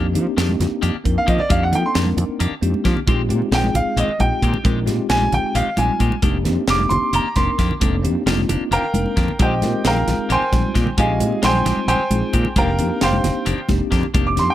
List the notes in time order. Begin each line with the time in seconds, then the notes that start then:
Already playing: F2 A#3 C4 D4 D#4 G4
0.14 F3 A#3 C4 D4 D#4 G4, closed hi-hat
0.27 low conga
0.37 F2 D#3 A#3 C4 D4 D#4 G4, snare, closed hi-hat, low conga
0.49 high conga, low conga
0.60 F2, snare, closed hi-hat, low conga
0.71 muted fretless electric bass stroke
0.82 F2 D#3 A#3 D4 G4, closed hi-hat
0.94 muted fretless electric bass stroke, low conga
1.04 F2 A#3 C4 D4 D#4 A#4, kick, closed hi-hat
1.18 F5
1.26 D#3 F3 A#3 D4 G4 D#5, kick, closed hi-hat
1.39 D5, muted fretless electric bass stroke, low conga
1.49 F2 D#3 A#3 C4 D4 D#4 G4 F5, kick, closed hi-hat, high conga
1.63 F#5
1.71 F3 A#3 C4 D4 D#4 A4 G5, closed hi-hat
1.86 C6
1.94 F2 D#3 A#3 C4 D4 D#4 G4 A#4, snare, closed hi-hat
2.06 high conga
2.17 F2, closed hi-hat, low conga
2.29 muted fretless electric bass stroke
2.40 F2 D#3 A#3 D4 G4, closed hi-hat
2.51 muted fretless electric bass stroke
2.61 F2 A#3 C4 D4 D#4 G4, closed hi-hat, high conga
2.74 high conga
2.84 D#3 F3 A#3 D4 G4, kick, snare, closed hi-hat, low conga
2.95 muted fretless electric bass stroke, low conga
3.06 A#1 D#3 G#3 C4 D#4 F4 G4, kick, closed hi-hat, high conga
3.29 A#2 G#3 C4 D#4 F4 G4, closed hi-hat
3.42 low conga
3.51 A#1 D#3 G#3 C4 D#4 F4 G4 G#4 G5, snare, closed hi-hat, low conga
3.64 high conga, low conga
3.74 A#1 F5, closed hi-hat, low conga
3.96 A#1 D#3 G#3 C4 G4 D#5, closed hi-hat
4.09 low conga
4.19 A#1 G#3 C4 D#4 F4 G4 G5, kick, closed hi-hat, high conga
4.42 A#2 D#3 G#3 C4 G4, kick, closed hi-hat
4.53 muted fretless electric bass stroke, low conga
4.63 A#1 D#3 G#3 C4 D#4 F4 G4 A#4, kick, closed hi-hat, high conga
4.86 A#2 G#3 C4 D#4 F4 G4, snare, closed hi-hat
4.99 low conga
5.09 A#1 D#3 G#3 C4 D#4 F4 G4 G#5, snare, closed hi-hat, low conga
5.22 high conga, low conga
5.32 A#1 G5, closed hi-hat, low conga
5.55 A#1 D#3 G#3 C4 G4 F5, closed hi-hat
5.67 low conga
5.77 A#1 G3 G#3 C4 D#4 F4 G4 G#5, closed hi-hat, high conga
6.00 A#2 D#3 G#3 C4 G4, kick, closed hi-hat
6.11 muted fretless electric bass stroke, low conga
6.22 F1 D#3 A#3 C4 D4 D#4 G4, kick, closed hi-hat, high conga
6.44 F2 A#3 C4 D4 D#4 G4, snare, closed hi-hat
6.57 low conga
6.67 F1 D#3 A#3 C4 D4 D#4 G4 D6, snare, closed hi-hat, low conga
6.80 high conga, low conga
6.89 F1 C6, closed hi-hat, low conga
7.02 muted fretless electric bass stroke
7.13 F1 D#3 A#3 D4 G4 A#5, closed hi-hat
7.26 low conga
7.35 F1 A#3 C4 D4 D#4 G4 A#4 C6, kick, snare, closed hi-hat, high conga
7.58 F2 D#3 A#3 D4 G4, kick, snare, closed hi-hat
7.69 muted fretless electric bass stroke, low conga
7.80 F1 D#3 A#3 C4 D4 D#4 G4 A4, kick, closed hi-hat, high conga, low conga
8.03 F2 A#3 C4 D4 D#4 G4, closed hi-hat
8.26 F1 D#3 A#3 C4 D4 D#4 F4 G4, snare, closed hi-hat, low conga
8.38 high conga, low conga
8.49 F1 A#3 D4 G4, closed hi-hat, low conga
8.61 low conga
8.71 F1 D#3 A#3 D4 G4 A#4 F5 G5 A#5, closed hi-hat
8.83 low conga
8.94 F1 A#3 C4 D4 D#4 A#4, closed hi-hat, high conga, low conga
9.06 high conga
9.16 F2 D#3 A#3 D4 G4, kick, snare, closed hi-hat, low conga
9.28 muted fretless electric bass stroke, low conga
9.39 A#1 D#3 G#3 C4 D#4 F4 G4 C5 D#5 G5, kick, closed hi-hat, high conga
9.61 A#2 G#3 C4 D#4 F4 A#4, snare, closed hi-hat
9.73 low conga
9.84 A#1 D#3 G#3 C4 D#4 F4 G4 G#4 A#4 F5 G5 A#5, snare, closed hi-hat, low conga
9.96 high conga, low conga
10.07 A#1, snare, closed hi-hat, low conga
10.18 muted fretless electric bass stroke
10.29 A#1 D#3 G#3 C4 G4 C5 G5 G#5 C6, closed hi-hat
10.41 muted fretless electric bass stroke, low conga
10.52 A#1 G3 G#3 C4 D#4 F4, kick, snare, closed hi-hat, high conga
10.75 A#2 D#3 G#3 C4 G4, kick, snare, closed hi-hat
10.86 muted fretless electric bass stroke, low conga
10.97 A#1 D#3 G#3 C4 D#4 F4 G4 G#4 D#5 F5 G#5, kick, closed hi-hat, high conga
11.19 A#2 G#3 C4 D#4 F4 G4, closed hi-hat
11.32 low conga
11.42 A#1 D#3 G3 G#3 C4 D#4 F4 G4 C5 G5 G#5 C6, snare, closed hi-hat
11.55 high conga, low conga
11.65 A#1 G#3 C4 G4, snare, closed hi-hat, low conga
11.88 A#1 D#3 G#3 C4 G4 C5 G5 G#5 C6, closed hi-hat
12.00 low conga
12.10 A#1 G#3 C4 D#4 F4 G#4, closed hi-hat, high conga
12.33 A#2 D#3 G#3 C4 G4, kick, closed hi-hat
12.45 muted fretless electric bass stroke, low conga
12.56 F1 D#3 A#3 C4 D4 D#4 G4 A#4 F5 G5 A#5, kick, closed hi-hat, high conga
12.79 F2 A#3 C4 D4 D#4 G4, closed hi-hat
13.01 F1 D#3 A#3 C4 D4 D#4 G4 C5 F5 G5 C6, snare, closed hi-hat, low conga
13.13 high conga, low conga
13.24 F1, snare, closed hi-hat, low conga
13.46 F1 D#3 A#3 D4 G4, closed hi-hat
13.58 low conga
13.68 F1 A#3 C4 D4 D#4 G4, kick, snare, closed hi-hat, high conga
13.91 F2 D#3 A#3 D4 G4, kick, snare, closed hi-hat
14.03 muted fretless electric bass stroke, low conga
14.14 F1 D#3 A#3 C4 D4 D#4 G4, kick, closed hi-hat, high conga
14.27 D6
14.36 F2 A#3 C4 D4 D#4 G4 C6, snare, closed hi-hat
14.50 G5